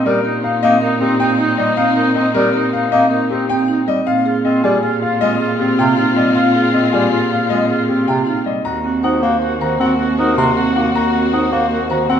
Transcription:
Already playing: A#2 C4 D#4 D#5
0.06 G3 D#4 G4 A#4
0.24 D#4 A#4
0.43 D#4 F5
0.63 A#3 C4 D#4 D#5
0.82 D#4 A#4
1.00 C4 D#4 G4
1.19 C4 D#4 G5
1.39 D#4
1.58 G3 D#4 D#5
1.77 C4 D#4 F5
1.96 D#4 A#4
2.15 C4 D#4 D#5
2.34 G3 D#4 G4 A#4
2.54 D#4 A#4
2.73 D#4 F5
2.92 A#3 C4 D#4 D#5
3.11 D#4 A#4
3.30 C4 D#4 G4
3.49 C4 D#4 G5
3.68 D#4
3.87 G3 D#5
4.06 A#2 C4 F4 F5
4.26 F4 G#4
4.45 C4 F4 D#5
4.63 G3 F4 G4 G#4
4.83 F4 G#4
5.02 F4 F5
5.21 G#3 C4 F4 D#5
5.40 F4 G#4
5.60 C4 F4 G4
5.78 C3 C4 F4 G5
5.98 D#4 F4
6.17 G3 F4 D#5
6.35 C4 F4 F5
6.55 F4 G#4
6.74 C4 F4 D#5
6.93 G3 F4 G4 G#4
7.12 F4 G#4
7.31 F4 F5
7.50 G#3 C4 F4 D#5
7.69 F4 G#4
7.89 C4 F4 G4
8.08 C3 C4 F4 G5
8.27 D#4 F4
8.46 G3 D#5
8.65 D#2 A#3 F#4 A#5
8.84 C4 F#4
9.03 D#4 F#4 C5 F#5
9.22 A#3 F#4 C5
9.42 F#4 A#4
9.61 D#3 F#4 C5 A#5
9.80 C4 F#4 F#5
9.99 C4 F#4
10.18 D#4 F#4 A#4 C5
10.38 C3 F#4 C6
10.56 C4 F#4
10.75 A#3 D#4 F#4 F#5
10.95 F#4 A#5
11.13 C4 F#4
11.32 D#4 F#4 C5 F#5
11.52 A#3 F#4 C5
11.71 F#4 A#4
11.90 D#3 F#4 C5 A#5
12.09 C4 F#4 F#5

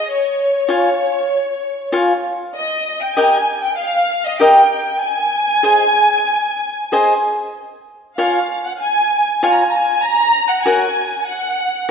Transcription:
0.12 C#5
0.68 F4 C#5 F5 G#5
1.92 F4 C#5 F5 G#5
2.55 D#5
3.00 G5
3.16 G4 A#4 D#5 G5 G#5
3.62 G5
3.77 F5
4.25 D#5
4.39 G4 A#4 D#5 G5
5.00 G#5
5.63 G#4 C5 D#5 G#5
6.92 G#4 C5 D#5 G#5
8.17 F4 C#5 F5 G#5
8.65 F#5
8.79 G#5
9.43 F4 C#5 F5 G#5
9.52 A#5
9.60 G#5
9.70 A#5
9.75 G#5
10.02 A#5
10.48 F#5
10.63 F#4 A#4 C#5 F#5 G#5
11.26 F#5

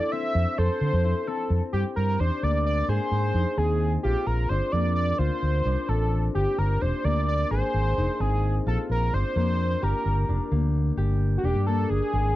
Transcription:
Already playing: D4 E4 G4 A4 D5
0.12 C4 E5
0.35 F2
0.58 F2 A4 C5
0.81 D3
0.93 F2
1.04 E4
1.27 C4 A4
1.50 F2
1.73 G2 G4
1.96 G2 A#4
2.20 E2 D4 C5
2.42 D2 A#3 D5
2.66 D5
2.88 G#2 G#4 C5
3.11 G#2
3.34 F2 D#4
3.57 D#2 C4 G#4
4.03 A#1 F4 G4
4.27 A#1 A#4
4.49 G1 D4 C5
4.72 F2 A#3 D5
4.96 D5
5.18 D2 F4 C5
5.42 D2
5.65 C2 D4
5.88 A1 C4 A4
6.35 G1 G4
6.58 G1 A#4
6.81 E1 D4 C5
7.04 D2 A#3 D5
7.28 D5
7.51 G#1 G#4 C5
7.74 G#1
7.97 F1 D#4
8.20 G#1 C4 G#4
8.66 A#1 F4 A4
8.89 A#1 A#4
9.13 G1 D4 C5
9.36 F2 A#3 C5
9.82 G1 G4 A#4
10.05 G1
10.29 F1 D4
10.51 D2 A#3
10.97 G1 G4
11.38 F#4
11.43 E1 D4 G4
11.55 G2
11.67 A#3 A4
11.90 G1 G#4
12.13 G#1 G#4

